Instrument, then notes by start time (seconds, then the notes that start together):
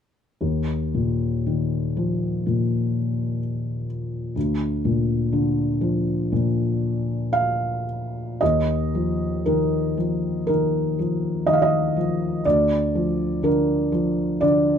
felt piano
0.41 D#2
0.94 A#2
1.46 D#3
1.97 F3
2.46 A#2
4.36 D2
4.85 A#2
5.33 D3
5.81 F3
6.32 A#2
7.33 F5
8.41 D#2 D#5
8.95 F3
9.46 D#3 A#4
9.97 F3
10.47 D#3 A#4
10.99 F3
11.46 D#3 D#5
11.53 F5
11.62 D#5
11.97 F3
12.45 D2 D5
12.95 F3
13.43 D3 A#4
13.92 F3
14.41 D3 D5